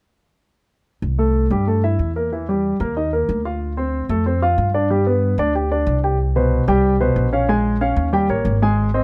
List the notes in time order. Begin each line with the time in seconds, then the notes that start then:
1.02 C2
1.18 A3 A4
1.50 G2 G3 G4
1.67 A3 A4
1.84 E4 E5
1.99 E2
2.16 A#3 A#4
2.32 E3 E4
2.49 G3 G4
2.80 D#2 A#3 A#4
2.97 D#4 D#5
3.13 A#3 A#4
3.29 D2
3.45 F4 F5
3.77 C4 C5
4.09 F2 A3 A4
4.26 C4 C5
4.42 F4 F5
4.58 G2
4.74 D4 D5
4.90 G3 G4
5.07 B3 B4
5.38 D2 D4 D5
5.55 G4 G5
5.71 D4 D5
5.87 C2
6.04 G4 G5
6.36 B2 B4 C5
6.68 C2 G3 G4 G5
7.00 B2 B4 C5
7.16 A#1
7.33 C#4 C#5 F5
7.49 G#3 G#4 G#5
7.81 C#4 C#5 F5
7.96 D#2
8.13 G3 G4 G5
8.29 A1 A#3 A#4 C#5
8.45 G#1
8.62 G#3 G#4 G#5
8.94 C4 C5 D#5